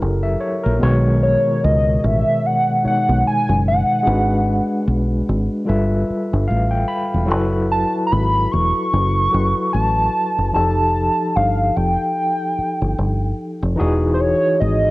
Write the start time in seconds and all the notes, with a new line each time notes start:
Already playing: F#3 E4 G4 A4 A#4
0.02 F#1
0.23 E5
0.41 C#5
0.64 A#1 A#4
0.79 B1 B2 D#3 G#3
0.83 C#5
1.23 C#5
1.64 C#2 D#5
1.99 D#5
2.04 A1 E5
2.46 F#5
2.83 B2 G#3 D#4 C#5, muted fingered electric bass stroke
2.87 F#5
3.09 B1
3.26 G#5, muted fingered electric bass stroke
3.49 F#1
3.68 F#5
4.03 G#3 D4 F#4
4.07 G#1 B4
4.88 B1
5.29 G#1
5.65 G1 G3 F4 A4 B4 E5
6.10 muted fingered electric bass stroke
6.33 G1
6.48 A1 F5
6.71 G5
6.88 B5
7.14 E1
7.26 F#3 E4 F#4 A4
7.30 F#1 B4
7.72 A5
8.07 A#5
8.12 G#1 B5
8.52 E1 C#6
8.93 F#1
9.31 F#1 F#3 E4 F#4 A4 B4
9.73 A1 A5
10.38 F#1
10.52 F1 F3 D#4 G4 A4 A5
11.36 G1 F5
11.76 F1 G5
12.59 muted fingered electric bass stroke
12.82 G1
12.98 G1
13.63 F1
13.76 E3 D#4 F#4 G#4
13.80 E1
14.14 C5
14.20 C#5
14.60 G#1 D#5